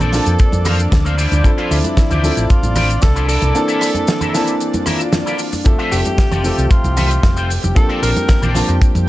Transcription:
Already playing: grand piano C4 D4 A5, analog synth pad D4 D5, tenor saxophone A4
0.00 fingered electric bass A#1, clean electric guitar A4 A#4 C5 D5, closed hi-hat, low conga, shaker
0.12 grand piano F3 A#3 C4 D4 A5, snare, open hi-hat, shaker
0.26 fingered electric bass F2, closed hi-hat, shaker
0.39 kick, closed hi-hat, shaker
0.52 fingered electric bass F2, closed hi-hat, high conga, shaker
0.65 clean electric guitar A4 A#4 C5 F5, cross-stick, open hi-hat, low conga, shaker
0.79 closed hi-hat, shaker
0.91 fingered electric bass D2, muted clean electric guitar stroke, kick, snare, closed hi-hat, high conga, shaker
1.05 clean electric guitar A4 A#4 C5 F5, closed hi-hat, shaker
1.17 clean electric guitar E4 F4 C5 D5, open hi-hat, shaker
1.32 fingered electric bass D2, closed hi-hat, high conga, shaker
1.44 grand piano F3 C4 D4 A4, kick, closed hi-hat, shaker
1.58 clean electric guitar E4 F4 C5 F5, closed hi-hat
1.71 fingered electric bass D2, tenor saxophone E4, cross-stick, open hi-hat, shaker
1.84 closed hi-hat, high conga, shaker
1.97 muted clean electric guitar stroke, kick, snare, closed hi-hat, shaker
2.10 fingered electric bass D2, clean electric guitar E4 F4 C5 D5, closed hi-hat, low conga, shaker
2.23 grand piano F3 C4 D4 A4, open hi-hat, high conga, shaker
2.37 fingered electric bass A1, closed hi-hat, shaker
2.50 tenor saxophone F4, kick, closed hi-hat, shaker
2.63 fingered electric bass A1, closed hi-hat, high conga, shaker
2.76 clean electric guitar E4 F4 C5 D5, cross-stick, open hi-hat, low conga, shaker
2.90 closed hi-hat, shaker
3.02 fingered electric bass C2, tenor saxophone A4, muted clean electric guitar stroke, kick, snare, closed hi-hat, high conga, shaker
3.15 clean electric guitar E4 F4 C5 D5, closed hi-hat, shaker
3.28 clean electric guitar E4 A4 A#4 D5, tenor saxophone A4, open hi-hat, shaker
3.42 fingered electric bass C2, closed hi-hat, high conga, shaker
3.54 grand piano E3 A#3 C4 D4 A5, closed hi-hat, shaker
3.68 clean electric guitar E4 A4 A#4 E5, closed hi-hat, shaker
3.81 cross-stick, open hi-hat, shaker
3.95 closed hi-hat, high conga, shaker
4.07 muted clean electric guitar stroke, snare, closed hi-hat, shaker
4.21 clean electric guitar E4 A4 A#4 E5, closed hi-hat, low conga, shaker
4.33 grand piano E3 A#3 C4 D4 A5, snare, open hi-hat, shaker
4.47 closed hi-hat, shaker
4.60 closed hi-hat, swell, shaker
4.74 closed hi-hat, high conga, shaker
4.86 clean electric guitar E4 A4 A#4 E5, cross-stick, open hi-hat, low conga, shaker
5.00 closed hi-hat, shaker
5.13 muted clean electric guitar stroke, snare, closed hi-hat, high conga, shaker
5.26 clean electric guitar E4 A4 A#4 D5, closed hi-hat, shaker
5.39 open hi-hat, shaker
5.52 muted clean electric guitar stroke, open hi-hat, high conga, shaker
5.65 grand piano F3 A3 C4 A4 E5, analog synth pad G4 G5, kick, closed hi-hat, shaker
5.78 clean electric guitar F4 A4 C5 E5, closed hi-hat
5.92 fingered electric bass F1, tenor saxophone G4, cross-stick, open hi-hat, shaker
6.05 closed hi-hat, high conga, shaker
6.18 muted clean electric guitar stroke, kick, snare, closed hi-hat, shaker
6.31 fingered electric bass F1, clean electric guitar F4 A4 C5 D5, closed hi-hat, low conga, shaker
6.44 grand piano F3 A3 C4 A4 E5, open hi-hat, shaker
6.58 fingered electric bass C2, closed hi-hat, shaker
6.70 tenor saxophone F4, kick, closed hi-hat, shaker
6.84 fingered electric bass C2, closed hi-hat, high conga, shaker
6.96 clean electric guitar F4 A4 C5 E5, cross-stick, open hi-hat, low conga, shaker
7.11 closed hi-hat, shaker
7.23 fingered electric bass F1, muted clean electric guitar stroke, kick, snare, closed hi-hat, high conga, shaker
7.37 clean electric guitar F4 A4 C5 G5, closed hi-hat, shaker
7.50 open hi-hat, shaker
7.63 fingered electric bass F1, muted clean electric guitar stroke, closed hi-hat, high conga, shaker
7.75 grand piano F3 A#3 C4 D4 A5, tenor saxophone A4, kick, closed hi-hat, shaker
7.89 clean electric guitar A4 A#4 C5 D5, closed hi-hat
8.02 fingered electric bass A#1, tenor saxophone A#4, cross-stick, open hi-hat, shaker
8.16 closed hi-hat, high conga, shaker
8.28 muted clean electric guitar stroke, kick, snare, closed hi-hat, shaker
8.42 fingered electric bass A#1, clean electric guitar A4 A#4 C5 D5, closed hi-hat, low conga, shaker
8.55 grand piano F3 A#3 C4 D4 A5, snare, open hi-hat, high conga, shaker
8.68 fingered electric bass F2, closed hi-hat, shaker
8.82 kick, closed hi-hat, shaker
8.95 fingered electric bass F2, closed hi-hat, high conga, shaker

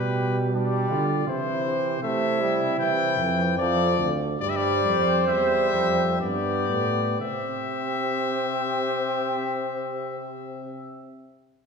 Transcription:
Already playing: tuba B2, trombone G3, flugelhorn G4, trumpet B4
0.53 trombone G3, flugelhorn D4, trumpet D5
0.90 tuba D3, flugelhorn F4
1.27 tuba C3, trombone E3, flugelhorn E4, trumpet C5
1.63 flugelhorn G4
2.01 tuba C3, trombone A3, flugelhorn E4, trumpet E5
2.41 trombone G3
2.78 tuba C3, trombone E3, trumpet G5
3.17 tuba F2
3.57 tuba F2, trombone F3, flugelhorn A4, trumpet D5
3.98 tuba D2
4.40 tuba G2, trombone G3, flugelhorn C5, trumpet D5
4.50 trumpet E5
4.57 trumpet D5
4.84 tuba F2
5.28 tuba E2, trombone G3, trumpet E5
5.73 tuba F2
6.19 tuba G2, trombone B3, flugelhorn G4, trumpet D5
6.69 tuba A2
7.20 tuba C3, trombone C4, flugelhorn G4, trumpet E5

